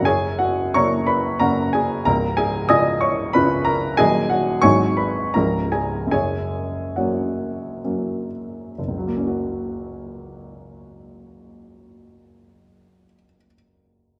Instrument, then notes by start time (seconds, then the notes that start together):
upright piano
0.01 F#1 F#2
0.05 G#4 C#5 G#5
0.39 F#4 F#5
0.74 C#3 A#3 C#4 C#5 A#5 C#6
1.07 B4 B5
1.40 C#3 A#3 C#4 A#4 F#5 A#5
1.73 G#4 G#5
2.05 C#1 C#2 A#4 A#5
2.37 G#4 G#5
2.69 C#3 C#4 F4 D#5 G#5 D#6
3.01 C#5 C#6
3.33 C#3 C#4 F4 B4 B5
3.65 A#4 A#5
3.97 D#1 D#2 F#3 A#3 D#4 G#4 D#5 G#5
4.30 F#4 F#5
4.62 G#1 G#2 F#3 G#3 D#4 C#5 G#5 C#6
4.97 B4 B5
5.34 C#1 C#2 F3 G#3 C#4 A#4 A#5
5.72 G#4 G#5
6.07 F#2
6.11 F#1 G#4 C#5 G#5
6.96 F#3 A#3 C#4 F#4 C#5 F#5
7.84 F#3 A#3 C#4
8.78 F#1
8.88 C#2
8.98 F#3
9.07 A#3
9.17 C#4
9.27 F#4